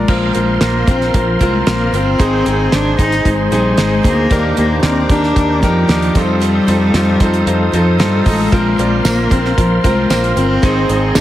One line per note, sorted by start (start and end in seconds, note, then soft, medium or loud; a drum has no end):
0.00 0.65 G#3 medium
0.00 0.11 D4 medium
0.00 0.09 F4 medium
0.00 0.09 A#4 medium
0.00 0.11 D5 medium
0.00 0.11 F5 medium
0.08 0.30 A#1 medium
0.08 0.84 A#2 medium
0.08 0.84 F3 medium
0.08 0.32 A#3 medium
0.08 0.28 C4 medium
0.08 0.34 C4 medium
0.08 0.28 F4 medium
0.08 0.35 F4 medium
0.08 2.17 A#4 medium
0.08 0.28 A#4 medium
0.08 0.36 A#4 medium
0.08 0.28 C5 medium
0.08 2.18 F5 medium
0.08 4.27 C6 medium
0.08 kick loud
0.08 crash medium
0.33 0.57 A#1 medium
0.33 0.86 A#3 medium
0.33 0.88 C4 medium
0.33 0.54 C4 medium
0.33 0.54 F4 medium
0.33 0.88 F4 medium
0.33 0.54 A#4 medium
0.33 0.89 A#4 medium
0.33 0.54 C5 medium
0.33 closed hi-hat medium
0.61 0.83 A#1 medium
0.61 0.92 A#3 medium
0.61 0.81 C4 medium
0.61 0.81 F4 medium
0.61 0.81 A#4 medium
0.61 0.81 C5 medium
0.61 snare medium
0.61 closed hi-hat medium
0.87 1.09 A#1 medium
0.87 1.38 A#3 medium
0.87 1.40 C4 medium
0.87 1.07 C4 medium
0.87 1.18 C4 medium
0.87 1.07 F4 medium
0.87 1.41 F4 medium
0.87 1.07 A#4 medium
0.87 1.42 A#4 medium
0.87 1.07 C5 medium
0.87 kick medium
0.87 closed hi-hat medium
1.01 snare soft
1.14 1.36 A#1 medium
1.14 1.42 F3 medium
1.14 1.34 C4 medium
1.14 1.34 F4 medium
1.14 1.34 A#4 medium
1.14 1.34 C5 medium
1.14 kick medium
1.14 closed hi-hat medium
1.39 1.62 C2 medium
1.39 1.70 G#3 medium
1.39 1.65 A#3 medium
1.39 1.66 C4 medium
1.39 1.60 C4 medium
1.39 1.60 F4 medium
1.39 1.67 F4 medium
1.39 1.60 A#4 medium
1.39 1.68 A#4 medium
1.39 1.60 C5 medium
1.39 kick medium
1.39 closed hi-hat medium
1.66 1.89 A#1 medium
1.66 1.91 A#3 medium
1.66 1.97 A#3 medium
1.66 1.86 C4 medium
1.66 1.93 C4 medium
1.66 1.86 F4 medium
1.66 1.94 F4 medium
1.66 1.86 A#4 medium
1.66 1.94 A#4 medium
1.66 1.86 C5 medium
1.66 snare loud
1.66 closed hi-hat medium
1.93 2.15 G1 medium
1.93 2.19 A#3 medium
1.93 2.12 C4 medium
1.93 2.19 C4 medium
1.93 2.76 C4 loud
1.93 2.13 F4 medium
1.93 2.20 F4 medium
1.93 2.13 A#4 medium
1.93 2.20 A#4 medium
1.93 2.13 C5 medium
1.93 closed hi-hat medium
2.18 2.41 G#1 medium
2.18 2.45 G#2 medium
2.18 2.95 G#2 medium
2.18 2.46 D#3 medium
2.18 2.95 D#3 medium
2.18 2.43 G#3 medium
2.18 2.39 C4 medium
2.18 2.45 C4 medium
2.18 2.39 D#4 medium
2.18 2.46 D#4 medium
2.18 4.28 G#4 medium
2.18 2.39 G#4 medium
2.18 2.47 G#4 medium
2.18 6.10 C5 medium
2.18 2.39 C5 loud
2.18 kick loud
2.18 closed hi-hat medium
2.45 2.68 G#1 medium
2.45 2.96 G#3 medium
2.45 2.65 C4 medium
2.45 2.98 C4 medium
2.45 2.65 D#4 medium
2.45 3.00 D#4 medium
2.45 2.65 G#4 medium
2.45 3.00 G#4 medium
2.45 2.65 C5 medium
2.45 closed hi-hat medium
2.72 2.94 G#1 medium
2.72 2.91 C4 medium
2.72 3.00 D4 medium
2.72 2.92 D#4 medium
2.72 2.92 G#4 medium
2.72 2.92 C5 medium
2.72 snare medium
2.72 closed hi-hat medium
2.98 3.20 G#1 medium
2.98 3.50 G#3 medium
2.98 3.51 C4 medium
2.98 3.18 C4 medium
2.98 3.18 D#4 medium
2.98 3.53 D#4 medium
2.98 3.28 D#4 medium
2.98 3.18 G#4 medium
2.98 3.53 G#4 medium
2.98 3.18 C5 medium
2.98 kick medium
2.98 closed hi-hat medium
3.12 snare soft
3.12 closed hi-hat medium
3.25 3.47 G#1 medium
3.25 3.55 G#3 medium
3.25 3.44 C4 medium
3.25 3.44 D#4 medium
3.25 3.45 G#4 medium
3.25 3.45 C5 medium
3.25 kick medium
3.25 closed hi-hat medium
3.51 3.73 A#1 medium
3.51 3.81 G3 medium
3.51 3.76 G#3 medium
3.51 3.71 C4 medium
3.51 3.77 C4 medium
3.51 3.71 D#4 medium
3.51 3.78 D#4 medium
3.51 3.71 G#4 medium
3.51 3.79 G#4 medium
3.51 3.71 C5 medium
3.51 closed hi-hat medium
3.77 3.99 G#1 medium
3.77 4.02 G#3 medium
3.77 4.05 G#3 medium
3.77 4.03 C4 medium
3.77 3.97 C4 medium
3.77 3.97 D#4 medium
3.77 4.04 D#4 medium
3.77 3.97 G#4 medium
3.77 4.05 G#4 medium
3.77 3.97 C5 medium
3.77 snare loud
3.77 closed hi-hat medium
4.03 4.26 D2 medium
4.03 4.30 G#3 medium
4.03 4.54 A#3 loud
4.03 4.31 C4 medium
4.03 4.24 C4 medium
4.03 4.24 D#4 medium
4.03 4.31 D#4 medium
4.03 4.24 G#4 medium
4.03 4.32 G#4 medium
4.03 4.24 C5 medium
4.03 kick medium
4.03 closed hi-hat medium
4.30 4.52 D#2 loud
4.30 5.06 A#2 medium
4.30 4.57 D#3 medium
4.30 4.55 G3 medium
4.30 4.56 A#3 medium
4.30 4.50 D4 medium
4.30 4.57 D4 medium
4.30 4.50 D#4 medium
4.30 6.13 G4 medium
4.30 4.50 G4 medium
4.30 4.58 G4 medium
4.30 4.50 A#4 loud
4.30 6.13 D6 medium
4.30 kick loud
4.30 closed hi-hat medium
4.56 4.79 D#2 medium
4.56 5.08 G3 medium
4.56 5.09 A#3 medium
4.56 4.83 A#3 medium
4.56 4.76 D4 medium
4.56 5.10 D4 medium
4.56 4.76 D#4 medium
4.56 4.76 G4 medium
4.56 5.11 G4 medium
4.56 4.77 C5 medium
4.56 closed hi-hat medium
4.83 5.05 D#2 medium
4.83 5.12 C4 loud
4.83 5.03 D4 medium
4.83 5.03 D#4 medium
4.83 5.03 G4 medium
4.83 5.03 A#4 medium
4.83 snare loud
4.83 closed hi-hat medium
5.09 5.31 D#2 medium
5.09 5.61 G3 medium
5.09 5.62 A#3 medium
5.09 5.64 D4 medium
5.09 5.29 D4 medium
5.09 5.63 D4 medium
5.09 5.29 D#4 medium
5.09 5.30 G4 medium
5.09 5.64 G4 medium
5.09 5.29 A#4 medium
5.09 kick medium
5.09 closed hi-hat medium
5.23 snare soft
5.36 5.63 D#2 medium
5.36 5.56 D4 medium
5.36 5.55 D#4 medium
5.36 5.56 G4 medium
5.36 5.56 A#4 medium
5.36 kick medium
5.36 closed hi-hat medium
5.62 5.84 F2 medium
5.62 6.17 F3 medium
5.62 5.86 G3 medium
5.62 5.88 A#3 medium
5.62 5.82 D4 medium
5.62 5.89 D4 medium
5.62 5.82 D#4 medium
5.62 5.82 G4 medium
5.62 5.90 G4 medium
5.62 5.82 A#4 medium
5.62 kick medium
5.62 closed hi-hat medium
5.88 6.10 D#2 medium
5.88 6.14 G3 medium
5.88 6.15 A#3 medium
5.88 6.16 D4 medium
5.88 6.09 D4 medium
5.88 6.09 D#4 medium
5.88 6.09 G4 medium
5.88 6.16 G4 medium
5.88 6.09 A#4 medium
5.88 snare loud
5.88 closed hi-hat medium
6.02 closed hi-hat soft
6.15 6.58 F2 medium
6.15 6.91 C3 medium
6.15 6.39 F3 medium
6.15 7.73 G3 loud
6.15 6.40 C4 medium
6.15 6.58 D#4 medium
6.15 6.41 D#4 medium
6.15 6.58 F4 medium
6.15 8.50 A4 medium
6.15 6.58 A4 medium
6.15 6.41 A4 medium
6.15 6.58 C5 medium
6.15 10.59 F5 medium
6.15 8.50 D#6 medium
6.15 kick medium
6.15 closed hi-hat medium
6.40 6.66 F3 medium
6.40 6.67 C4 medium
6.40 6.68 D#4 medium
6.40 6.68 A4 medium
6.40 closed hi-hat medium
6.67 6.89 F2 medium
6.67 7.19 F3 medium
6.67 7.20 C4 medium
6.67 6.87 D#4 medium
6.67 7.21 D#4 medium
6.67 6.87 F4 medium
6.67 6.87 A4 medium
6.67 7.22 A4 medium
6.67 6.87 C5 medium
6.67 closed hi-hat medium
6.94 7.15 F2 medium
6.94 7.13 D#4 medium
6.94 7.14 F4 medium
6.94 7.13 A4 medium
6.94 7.13 C5 medium
6.94 snare medium
6.94 closed hi-hat medium
7.20 7.42 F2 medium
7.20 7.72 F3 medium
7.20 7.73 C4 medium
7.20 7.40 D#4 medium
7.20 7.73 D#4 medium
7.20 7.40 F4 medium
7.20 7.40 A4 medium
7.20 7.74 A4 medium
7.20 7.40 C5 medium
7.20 kick medium
7.20 closed hi-hat medium
7.34 closed hi-hat soft
7.46 7.68 F2 medium
7.46 7.66 D#4 medium
7.46 7.66 F4 medium
7.46 7.66 A4 medium
7.46 7.66 C5 medium
7.46 closed hi-hat medium
7.72 7.99 F2 medium
7.72 7.97 F3 medium
7.72 8.02 F3 medium
7.72 7.99 C4 medium
7.72 7.93 D#4 medium
7.72 8.00 D#4 medium
7.72 7.93 F4 medium
7.72 7.93 A4 medium
7.72 8.01 A4 medium
7.72 7.93 C5 medium
7.72 closed hi-hat medium
7.98 8.21 G2 medium
7.98 8.24 F3 medium
7.98 8.28 G3 medium
7.98 8.25 C4 medium
7.98 8.19 D#4 medium
7.98 8.26 D#4 medium
7.98 8.18 F4 medium
7.98 8.19 A4 medium
7.98 8.27 A4 medium
7.98 8.19 C5 medium
7.98 snare loud
7.98 closed hi-hat medium
8.25 8.48 A1 medium
8.25 8.51 F3 medium
8.25 9.05 G#3 medium
8.25 8.51 C4 medium
8.25 8.45 D#4 medium
8.25 8.52 D#4 medium
8.25 8.45 F4 medium
8.25 8.45 A4 medium
8.25 8.53 A4 medium
8.25 8.45 D#5 medium
8.25 kick medium
8.25 open hi-hat medium
8.51 8.74 A#1 medium
8.51 9.27 A#2 medium
8.51 9.27 F3 medium
8.51 8.76 A#3 medium
8.51 8.77 C4 medium
8.51 8.71 C4 medium
8.51 8.71 F4 medium
8.51 8.78 F4 medium
8.51 10.61 A#4 medium
8.51 8.71 A#4 medium
8.51 8.79 A#4 medium
8.51 8.72 C5 loud
8.51 11.21 C6 medium
8.51 kick loud
8.51 closed hi-hat medium
8.77 9.00 A#1 medium
8.77 9.29 A#3 medium
8.77 9.31 C4 medium
8.77 8.98 C4 medium
8.77 9.31 F4 medium
8.77 8.98 F4 medium
8.77 8.98 A#4 medium
8.77 9.32 A#4 medium
8.77 8.98 D5 medium
8.77 closed hi-hat medium
9.05 9.26 A#1 medium
9.05 9.34 A#3 medium
9.05 9.24 C4 medium
9.05 9.24 F4 medium
9.05 9.24 A#4 medium
9.05 9.24 C5 medium
9.05 snare loud
9.05 closed hi-hat medium
9.05 tambourine medium
9.30 9.53 A#1 medium
9.30 9.82 A#3 medium
9.30 9.50 C4 medium
9.30 9.85 C4 medium
9.30 9.58 C4 medium
9.30 9.50 F4 medium
9.30 9.85 F4 medium
9.30 9.50 A#4 medium
9.30 9.85 A#4 medium
9.30 9.50 C5 medium
9.30 kick medium
9.30 closed hi-hat medium
9.45 snare soft
9.57 9.79 A#1 loud
9.57 9.82 F3 medium
9.57 9.76 C4 medium
9.57 9.76 F4 medium
9.57 9.76 A#4 medium
9.57 9.77 C5 medium
9.57 kick medium
9.57 closed hi-hat medium
9.84 10.06 C2 medium
9.84 10.12 G#3 medium
9.84 10.08 A#3 medium
9.84 10.03 C4 medium
9.84 10.10 C4 medium
9.84 10.03 F4 medium
9.84 10.11 F4 medium
9.84 10.03 A#4 medium
9.84 10.12 A#4 medium
9.84 10.03 C5 medium
9.84 kick medium
9.84 closed hi-hat medium
10.10 10.31 A#1 medium
10.10 10.35 A#3 medium
10.10 10.36 A#3 medium
10.10 10.29 C4 medium
10.10 10.36 C4 medium
10.10 10.29 F4 medium
10.10 10.37 F4 medium
10.10 10.29 A#4 medium
10.10 10.38 A#4 medium
10.10 10.29 C5 medium
10.10 snare loud
10.10 closed hi-hat medium
10.10 tambourine medium
10.24 closed hi-hat soft
10.36 10.58 G1 medium
10.36 10.62 A#3 medium
10.36 10.56 C4 medium
10.36 11.18 C4 loud
10.36 10.63 C4 medium
10.36 10.56 F4 medium
10.36 10.64 F4 medium
10.36 10.56 A#4 medium
10.36 10.64 A#4 medium
10.36 10.56 C5 medium
10.36 closed hi-hat medium
10.62 10.85 G#1 medium
10.62 10.89 G#2 medium
10.62 11.21 G#2 medium
10.62 10.89 D#3 medium
10.62 11.21 D#3 medium
10.62 10.87 G#3 medium
10.62 10.82 C4 medium
10.62 10.88 C4 medium
10.62 10.82 D#4 medium
10.62 10.89 D#4 medium
10.62 11.21 G#4 medium
10.62 10.82 G#4 medium
10.62 10.90 G#4 medium
10.62 10.82 C5 loud
10.62 11.21 D#5 medium
10.62 kick loud
10.62 closed hi-hat medium
10.88 11.11 G#1 medium
10.88 11.21 G#3 medium
10.88 11.08 C4 medium
10.88 11.21 C4 medium
10.88 11.09 D#4 medium
10.88 11.21 D#4 medium
10.88 11.09 G#4 medium
10.88 11.21 G#4 medium
10.88 11.09 C5 medium
10.88 closed hi-hat medium
11.15 11.21 G#1 medium
11.15 11.21 C4 medium
11.15 11.21 D4 medium
11.15 11.21 D#4 medium
11.15 11.21 G#4 medium
11.15 11.21 D#5 medium
11.15 snare loud
11.15 closed hi-hat medium
11.15 tambourine medium